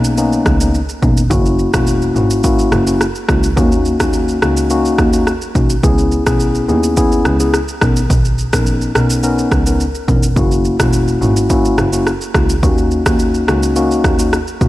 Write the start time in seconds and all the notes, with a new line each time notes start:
Already playing: B1 A#3 B3 C#4 D#4
0.04 shaker
0.18 A#3 B3 C#4 D#4, shaker
0.33 shaker
0.46 C#2, kick, cross-stick, shaker
0.60 A#3 B3 C#4 D#4, shaker
0.74 shaker
0.89 shaker
1.02 E1 A#3 B3 C#4 D#4, kick, shaker
1.17 shaker
1.31 F#1 A#3 C#4 E4 F#4, kick, shaker
1.46 shaker
1.59 shaker
1.74 E1 A#3 C#4 E4 F#4, kick, cross-stick, shaker
1.87 shaker
2.02 shaker
2.15 G#1 A#3 C#4 E4 F#4, shaker
2.30 shaker
2.44 A#3 C#4 E4 F#4, kick, shaker
2.59 shaker
2.72 F#1, cross-stick, shaker
2.86 A#3 C#4 E4 F#4, shaker
3.01 cross-stick, shaker
3.15 shaker
3.28 C#2 A#3 C#4 E4 F#4, kick, cross-stick, shaker
3.43 shaker
3.57 D#2 A#3 C#4 D#4 F#4, kick, shaker
3.72 shaker
3.85 shaker
4.00 D#2 A#3 C#4 D#4 F#4, kick, cross-stick, shaker
4.13 shaker
4.28 shaker
4.42 C#2 A#3 C#4 D#4 F#4, cross-stick, shaker
4.57 shaker
4.70 A#3 C#4 D#4 F#4, shaker
4.85 shaker
4.98 D#2, kick, cross-stick, shaker
5.13 A#3 C#4 D#4 F#4, shaker
5.27 cross-stick, shaker
5.41 shaker
5.55 B1 A#3 C#4 D#4 F#4, kick, shaker
5.70 shaker
5.83 C#2 B3 C#4 E4 G#4, kick, shaker
5.98 shaker
6.12 shaker
6.26 B1 B3 C#4 E4 G#4, kick, cross-stick, shaker
6.40 shaker
6.55 shaker
6.69 D#2 B3 C#4 E4 G#4, shaker
6.83 shaker
6.97 B3 C#4 E4 G#4, kick, shaker
7.12 shaker
7.25 C#2, cross-stick, shaker
7.40 B3 C#4 E4 G#4, shaker
7.54 cross-stick, shaker
7.68 shaker
7.81 B1 B3 C#4 D#4 A#4, kick, cross-stick, shaker
7.96 shaker
8.10 B1, kick, shaker
8.25 shaker
8.38 shaker
8.53 A#1 B3 C#4 D#4 A#4, kick, cross-stick, shaker
8.66 shaker
8.81 shaker
8.95 B1 B3 C#4 D#4 A#4, cross-stick, shaker
9.10 shaker
9.23 B3 C#4 D#4 A#4, shaker
9.38 shaker
9.52 C#2, kick, cross-stick, shaker
9.66 B3 C#4 D#4 A#4, shaker
9.80 shaker
9.95 shaker
10.08 E1 B3 C#4 D#4 A#4, kick, shaker
10.23 shaker
10.36 F#1 A#3 C#4 E4 F#4, kick, shaker
10.51 shaker
10.65 shaker
10.79 E1 A#3 C#4 E4 F#4, kick, cross-stick, shaker
10.93 shaker
11.08 shaker
11.21 G#1 A#3 C#4 E4 F#4, shaker
11.36 shaker
11.50 A#3 C#4 E4 F#4, kick, shaker
11.65 shaker
11.78 F#1, cross-stick, shaker
11.93 A#3 C#4 E4 F#4, shaker
12.07 cross-stick, shaker
12.21 shaker
12.34 C#2 A#3 C#4 E4 F#4, kick, cross-stick, shaker
12.49 shaker
12.63 D#2 A#3 C#4 D#4 F#4, kick, shaker
12.78 shaker
12.91 shaker
13.06 D#2 A#3 C#4 D#4 F#4, kick, cross-stick, shaker
13.19 shaker
13.34 shaker
13.47 C#2 A#3 C#4 D#4 F#4, cross-stick, shaker
13.63 shaker
13.76 A#3 C#4 D#4 F#4, shaker
13.91 shaker
14.04 D#2, kick, cross-stick, shaker
14.19 A#3 C#4 D#4 F#4, shaker
14.33 cross-stick, shaker
14.47 shaker
14.61 B1 A#3 C#4 D#4 F#4, kick, shaker